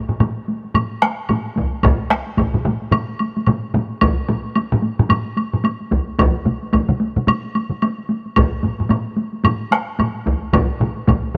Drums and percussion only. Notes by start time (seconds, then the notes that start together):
0.09 taiko low-mid, taiko high
0.20 taiko low-mid, taiko high, high woodblock
0.37 taiko high
0.48 taiko high
0.65 taiko high
0.74 taiko low-mid, taiko high, high woodblock
0.91 taiko high
1.02 taiko rim, taiko high, high woodblock
1.29 taiko low-mid, taiko high, high woodblock
1.46 taiko high
1.56 taiko, taiko high
1.73 taiko high
1.83 taiko, taiko low-mid, taiko mid, taiko high, high woodblock
2.00 taiko high
2.10 taiko rim, taiko high
2.27 taiko high
2.37 taiko, taiko low-mid, taiko mid, taiko high, high woodblock
2.54 taiko low-mid, taiko mid, taiko high
2.65 taiko low-mid, taiko mid, taiko high
2.82 taiko high
2.91 taiko low-mid, taiko mid, taiko high, high woodblock
3.09 taiko high
3.19 taiko high, high woodblock
3.37 taiko high
3.47 taiko low-mid, taiko mid, taiko high, high woodblock
3.63 taiko high
3.74 taiko low-mid, taiko mid, taiko high
3.90 taiko high
4.01 taiko, taiko high, high woodblock
4.18 taiko high
4.28 taiko low-mid, taiko high
4.45 taiko high
4.56 taiko high, high woodblock
4.72 taiko low-mid, taiko high
4.82 taiko high
4.99 taiko low-mid
5.09 taiko low-mid, taiko high, high woodblock
5.26 taiko high
5.37 taiko high, high woodblock
5.53 taiko low-mid
5.64 taiko high, high woodblock
5.80 taiko high
5.91 taiko, taiko high
6.07 taiko high
6.19 taiko, taiko high, high woodblock
6.35 taiko high
6.46 taiko mid, taiko high
6.63 taiko high
6.73 taiko, taiko high, high woodblock
6.89 taiko mid, taiko high
7.00 taiko high
7.17 taiko mid, taiko high
7.27 taiko mid, taiko high, high woodblock
7.44 taiko high
7.55 taiko high, high woodblock
7.70 taiko mid
7.82 taiko high, high woodblock
7.98 taiko high
8.09 taiko high
8.26 taiko high
8.36 taiko, taiko low-mid, taiko high, high woodblock
8.53 taiko high
8.63 taiko low-mid, taiko high
8.79 taiko low-mid, taiko high
8.89 taiko low-mid, taiko high, high woodblock
9.06 taiko high
9.16 taiko high
9.33 taiko high
9.44 taiko low-mid, taiko high, high woodblock
9.61 taiko high
9.71 taiko rim, taiko high, high woodblock
9.99 taiko low-mid, taiko high, high woodblock
10.15 taiko high
10.26 taiko, taiko high
10.43 taiko high
10.53 taiko, taiko low-mid, taiko mid, taiko high, high woodblock
10.70 taiko high
10.80 taiko low-mid, taiko mid, taiko high
10.97 taiko high
11.07 taiko, taiko low-mid, taiko mid, taiko high, high woodblock
11.24 taiko high